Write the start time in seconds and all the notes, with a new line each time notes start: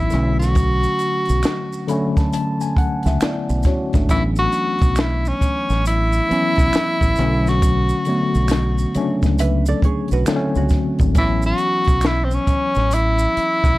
Already playing: E3 F#3 B3 D#4 E4
0.10 B1 D3 F#3 A3, snare, closed hi-hat, maracas
0.15 C#4
0.39 F#4, snare, closed hi-hat, maracas
0.55 kick, closed hi-hat, maracas
0.83 maracas
0.99 closed hi-hat, maracas
1.25 closed hi-hat, maracas
1.30 B1
1.43 finger snap, snare, closed hi-hat, maracas
1.73 maracas
1.88 D3 F#3 A3 C#4 B5, closed hi-hat, maracas
2.17 A5, kick, snare, closed hi-hat, maracas
2.33 A5, closed hi-hat, maracas
2.61 G#5, maracas
2.77 F#5, muted fingered electric bass stroke, kick, closed hi-hat
3.03 C#2 E5, snare, closed hi-hat, maracas
3.21 B3 E4 D5, finger snap, snare, closed hi-hat, maracas
3.49 B1, maracas
3.63 F#4 C#5, kick, snare, closed hi-hat, maracas
3.67 C#4
3.93 G#1 A3 D4, kick, snare, closed hi-hat, maracas
4.09 A1 E3 F#3 B3 C#4 E4, kick, closed hi-hat, maracas
4.36 F#4, maracas
4.52 closed hi-hat, maracas
4.79 B1, kick, closed hi-hat, maracas
4.96 finger snap, snare, closed hi-hat, maracas
5.00 E4
5.25 C#4, maracas
5.41 muted fingered electric bass stroke, kick, closed hi-hat, maracas
5.69 A1, snare, maracas
5.85 E4, closed hi-hat, maracas
6.13 maracas
6.29 E3 F#3 B3 C#4, muted fingered electric bass stroke, closed hi-hat
6.55 B1, kick, snare, closed hi-hat, maracas
6.73 finger snap, snare, closed hi-hat, maracas
7.01 A1, kick, maracas
7.16 B1 D3 F#3, snare, closed hi-hat, maracas
7.20 A3 C#4
7.46 F#4, snare, closed hi-hat, maracas
7.62 kick, closed hi-hat, maracas
7.89 maracas
8.05 D3 F#3 A3, closed hi-hat, maracas
8.09 B3
8.35 B1, maracas
8.48 finger snap, snare, closed hi-hat, maracas
8.78 maracas
8.94 C#3 F#3 A3 C#4, muted fingered electric bass stroke, closed hi-hat, maracas
9.01 D4
9.23 C#2, kick, snare, closed hi-hat, maracas
9.39 B4 E5, closed hi-hat, maracas
9.66 A4 D5, maracas
9.82 G#4 C#5, muted fingered electric bass stroke, kick, closed hi-hat
10.08 B1, closed hi-hat, maracas
10.13 F#4 B4
10.26 D3 F#3 A3 C4 E4 A4, finger snap, snare, closed hi-hat, maracas
10.36 C#4
10.55 C#2 C#4 F#4, maracas
10.69 kick, snare, closed hi-hat, maracas
10.99 G#1, kick, closed hi-hat, maracas
11.15 A1 E3 F#3 B3 C#4 E4, kick, closed hi-hat, maracas
11.42 F#4, maracas
11.58 closed hi-hat, maracas
11.84 B1, kick, closed hi-hat, maracas
12.01 finger snap, snare, closed hi-hat, maracas
12.07 E4
12.24 C4
12.31 C#4, maracas
12.47 muted fingered electric bass stroke, kick, closed hi-hat, maracas
12.75 A1, snare, maracas
12.91 E4, closed hi-hat, maracas
13.19 maracas
13.37 muted fingered electric bass stroke, closed hi-hat
13.64 B1, kick, snare, maracas